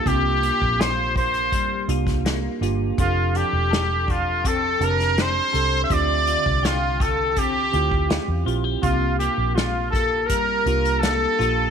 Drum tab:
HH |x-x-x-xxx-xxx-x-|x-x-x-x-x-xxx-x-|x-x-x-x-x-x-x-x-|x-x-x-x-x-xxx-x-|
SD |----o------oo---|----o------oo---|----o-------o---|----o-------o---|
BD |o--o--o-o--o----|o-----o-o-------|o--o--o-o--o----|o-----o-o-------|